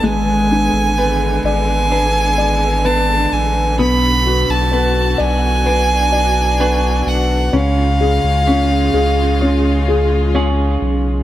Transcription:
Already playing: string section D3 B3, clean electric guitar A3 D4 A4
0.03 sub bass G#1, felt piano G#3, string section G#3, clean electric guitar G#3, violin G#5
0.51 felt piano D4
0.73 sub bass G#1
0.98 clean electric guitar B3, felt piano B4
1.44 sub bass G#1, felt piano D5, violin G#5
1.92 clean electric guitar D4, felt piano B4
2.38 felt piano D5
2.84 clean electric guitar B3 D4, felt piano B4, violin A5
3.32 sub bass A1, violin G#5
3.78 sub bass B1, clean electric guitar B2, felt piano B3, string section F#4, violin B5
4.26 felt piano F#4
4.49 sub bass B1, violin A5
4.72 clean electric guitar B3, felt piano B4
5.18 sub bass B1, felt piano D5, violin G#5
5.66 string section D4, clean electric guitar D4, felt piano B4
6.12 felt piano D5
6.60 clean electric guitar B3 D4 F#4, felt piano B4
7.06 sub bass B1, violin F#5
7.52 sub bass C#2, string section C#3 G#3 F4, clean electric guitar C#3, felt piano C#4
7.57 violin F5
8.01 felt piano G#4
8.24 sub bass C#2
8.47 clean electric guitar C#4, felt piano C#4
8.94 sub bass C#2, felt piano G#4
9.41 felt piano C#4, clean electric guitar F4
9.88 felt piano G#4
10.34 felt piano C#4, clean electric guitar C#4 F4 G#4
10.82 sub bass B1

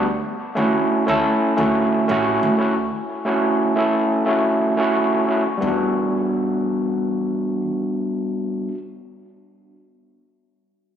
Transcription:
Already playing: upright bass D2
0.55 upright bass D2, tine electric piano A3 C#4 E4 F#4
1.06 upright bass D2, tine electric piano A3 C#4 E4 A4
1.56 upright bass D2, tine electric piano A3 C#4 E4 F#4
2.08 upright bass A1, tine electric piano A3 C#4 E4 F#4
2.43 upright bass D2
2.58 tine electric piano A3 C#4 E4 F#4
3.25 tine electric piano A3 C#4 E4 F#4
3.76 tine electric piano A3 C#4 E4 A4
4.26 tine electric piano A3 C#4 E4 F#4
4.77 tine electric piano A3 C#4 E4 F#4
5.27 tine electric piano A3 C#4 E4 F#4
5.58 tine electric piano G3 B3
5.62 upright bass E2, tine electric piano D4
5.67 tine electric piano F#4

